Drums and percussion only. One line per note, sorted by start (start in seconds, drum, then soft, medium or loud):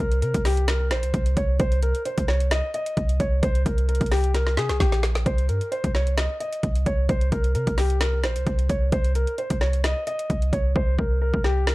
0.12 closed hi-hat medium
0.22 closed hi-hat medium
0.34 kick loud
0.34 closed hi-hat medium
0.45 snare medium
0.45 open hi-hat medium
0.57 closed hi-hat medium
0.68 snare loud
0.68 closed hi-hat medium
0.91 snare medium
0.91 closed hi-hat medium
1.03 closed hi-hat medium
1.14 kick medium
1.14 closed hi-hat medium
1.26 closed hi-hat medium
1.37 kick medium
1.37 closed hi-hat medium
1.60 kick loud
1.60 closed hi-hat medium
1.72 closed hi-hat medium
1.82 closed hi-hat medium
1.95 closed hi-hat medium
2.05 closed hi-hat medium
2.18 kick medium
2.18 closed hi-hat medium
2.28 snare medium
2.40 closed hi-hat medium
2.51 snare loud
2.51 closed hi-hat medium
2.74 closed hi-hat medium
2.86 closed hi-hat medium
2.97 kick medium
2.97 closed hi-hat medium
3.09 closed hi-hat medium
3.20 kick medium
3.20 closed hi-hat medium
3.43 kick loud
3.43 closed hi-hat medium
3.55 closed hi-hat medium
3.66 kick medium
3.66 closed hi-hat medium
3.78 closed hi-hat soft
3.89 closed hi-hat medium
3.95 closed hi-hat medium
4.01 kick medium
4.01 closed hi-hat medium
4.06 closed hi-hat medium
4.12 snare medium
4.12 open hi-hat medium
4.24 closed hi-hat medium
4.35 snare medium
4.35 closed hi-hat medium
4.47 snare medium
4.57 snare medium
4.57 closed hi-hat medium
4.69 snare medium
4.69 closed hi-hat medium
4.80 kick medium
4.80 snare medium
4.80 closed hi-hat medium
4.92 snare medium
4.92 closed hi-hat medium
5.03 snare loud
5.03 closed hi-hat medium
5.15 snare loud
5.26 kick loud
5.26 closed hi-hat medium
5.38 closed hi-hat medium
5.49 closed hi-hat medium
5.61 closed hi-hat medium
5.72 closed hi-hat medium
5.84 kick medium
5.84 closed hi-hat medium
5.95 snare medium
6.07 closed hi-hat medium
6.18 snare loud
6.18 closed hi-hat medium
6.40 closed hi-hat medium
6.53 closed hi-hat medium
6.63 kick medium
6.63 closed hi-hat medium
6.75 closed hi-hat medium
6.86 kick medium
6.86 closed hi-hat medium
7.09 kick loud
7.09 closed hi-hat medium
7.21 closed hi-hat medium
7.32 kick medium
7.32 closed hi-hat medium
7.44 closed hi-hat medium
7.55 closed hi-hat medium
7.67 kick medium
7.67 closed hi-hat medium
7.78 snare medium
7.78 open hi-hat medium
7.90 closed hi-hat medium
8.01 snare loud
8.01 closed hi-hat medium
8.24 snare medium
8.24 closed hi-hat medium
8.36 closed hi-hat medium
8.47 kick medium
8.47 closed hi-hat medium
8.59 closed hi-hat medium
8.70 kick medium
8.70 closed hi-hat medium
8.92 kick loud
8.92 closed hi-hat medium
9.04 closed hi-hat medium
9.15 closed hi-hat medium
9.27 closed hi-hat medium
9.38 closed hi-hat medium
9.50 kick loud
9.50 closed hi-hat medium
9.61 snare medium
9.73 closed hi-hat medium
9.84 snare loud
9.84 closed hi-hat medium
10.07 closed hi-hat medium
10.19 closed hi-hat medium
10.30 kick medium
10.30 closed hi-hat medium
10.42 closed hi-hat medium
10.53 kick medium
10.53 closed hi-hat medium
10.76 kick loud
10.99 kick medium
11.34 kick medium
11.44 snare medium
11.67 snare loud